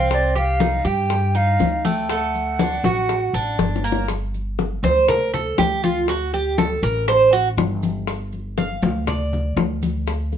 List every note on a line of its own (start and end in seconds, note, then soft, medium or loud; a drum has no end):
0.00 0.79 C2 medium
0.00 0.34 C4 medium
0.00 0.11 F5 medium
0.10 0.35 D5 medium
0.10 high bongo medium
0.10 high conga soft
0.10 maracas medium
0.35 0.60 G4 medium
0.35 0.89 F5 loud
0.35 high bongo soft
0.35 high conga soft
0.35 maracas soft
0.60 0.84 D#4 medium
0.60 high bongo medium
0.60 high conga medium
0.60 maracas medium
0.85 1.56 G2 medium
0.85 1.33 G4 medium
0.85 1.38 G5 loud
0.85 high bongo soft
0.85 high conga soft
0.85 maracas soft
1.10 high bongo medium
1.10 high conga soft
1.10 maracas medium
1.35 1.83 D#4 medium
1.35 1.87 F5 medium
1.35 high conga soft
1.35 maracas soft
1.59 2.78 D2 medium
1.59 high bongo soft
1.59 low bongo medium
1.59 high conga medium
1.59 maracas medium
1.84 2.09 A3 medium
1.84 2.12 G5 medium
1.84 high bongo soft
1.84 high conga medium
1.84 maracas soft
2.10 2.58 A3 medium
2.10 3.60 F#5 medium
2.10 high bongo medium
2.10 high conga soft
2.10 maracas medium
2.34 high bongo soft
2.34 high conga soft
2.34 maracas soft
2.59 2.84 D4 medium
2.59 high bongo medium
2.59 high conga loud
2.59 maracas medium
2.84 3.30 A1 medium
2.84 3.33 F#4 medium
2.84 high bongo soft
2.84 high conga medium
2.84 maracas soft
3.09 high bongo medium
3.09 high conga soft
3.09 maracas medium
3.33 3.57 A1 medium
3.33 3.83 D4 medium
3.33 high conga soft
3.33 maracas soft
3.59 4.77 G1 medium
3.59 high bongo medium
3.59 high conga medium
3.59 maracas medium
3.76 low bongo medium
3.84 4.08 A#3 medium
3.84 maracas soft
3.92 low bongo medium
4.08 high bongo medium
4.08 high conga soft
4.08 maracas medium
4.34 high conga soft
4.34 maracas soft
4.59 high bongo medium
4.59 high conga medium
4.59 maracas soft
4.83 5.54 D2 medium
4.83 5.08 C5 medium
4.83 high conga loud
4.83 maracas medium
5.08 5.33 A#4 medium
5.08 high bongo medium
5.08 high conga soft
5.08 low conga medium
5.08 maracas medium
5.34 5.58 A4 medium
5.34 high conga soft
5.34 low conga medium
5.34 maracas soft
5.58 6.76 D2 medium
5.58 5.83 G4 medium
5.58 high bongo medium
5.58 low bongo medium
5.58 high conga medium
5.58 maracas soft
5.84 6.08 F4 medium
5.84 high conga medium
5.84 maracas medium
6.08 6.33 F#4 medium
6.08 high bongo medium
6.08 high conga soft
6.08 maracas medium
6.33 6.58 G4 medium
6.33 high bongo soft
6.33 high conga soft
6.33 maracas soft
6.58 6.82 A4 medium
6.58 high bongo medium
6.58 high conga loud
6.58 maracas soft
6.83 7.54 A1 loud
6.83 7.07 A#4 medium
6.83 high bongo soft
6.83 high conga soft
6.83 maracas medium
7.08 7.32 C5 loud
7.08 high bongo medium
7.08 high conga soft
7.08 maracas medium
7.33 7.48 F#4 loud
7.33 high bongo soft
7.33 high conga soft
7.33 maracas soft
7.57 8.76 G1 medium
7.57 high bongo medium
7.57 low bongo medium
7.57 high conga medium
7.57 maracas soft
7.83 high conga medium
7.83 maracas medium
8.07 high bongo medium
8.07 high conga soft
8.07 maracas medium
8.32 high conga soft
8.32 maracas soft
8.58 9.04 F5 medium
8.58 high bongo medium
8.58 high conga medium
8.58 maracas soft
8.82 9.53 D2 loud
8.82 high conga loud
8.82 maracas medium
9.07 9.54 D5 medium
9.07 high bongo medium
9.07 high conga soft
9.07 low conga medium
9.07 maracas medium
9.33 high conga soft
9.33 low conga medium
9.33 maracas soft
9.57 10.38 D2 loud
9.57 high bongo medium
9.57 low bongo medium
9.57 high conga medium
9.57 maracas soft
9.82 high conga medium
9.82 maracas medium
10.07 high bongo medium
10.07 high conga soft
10.07 maracas medium
10.32 high bongo soft
10.32 high conga soft
10.32 maracas soft